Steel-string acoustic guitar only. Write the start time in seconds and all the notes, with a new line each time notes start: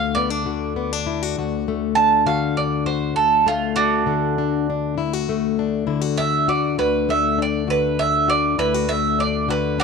Already playing: D2 D3 A3 D4 F#4
0.17 B3
0.30 D4
0.46 D3 F#4
0.76 B3
0.93 D4
1.07 E4
1.23 F#4
1.38 D2 F#4
1.68 A3
1.97 D4
2.26 D3 F#4
2.57 D4
2.86 F#4
3.16 D2
3.46 A3
3.77 D4
4.06 D3 D4
4.38 D4
4.70 D4
4.98 D2 E4
5.13 F#4
5.29 A3
5.59 D4
5.87 D3 E4
6.01 F#4
6.20 D4
6.48 F#4
6.78 D2 F#4
7.09 A3
7.38 D4
7.67 D3 F#4
7.99 D4
8.28 F#4
8.58 D2 E4
8.74 F#4
8.89 A3
9.19 D4
9.48 D3 F#4
9.78 D4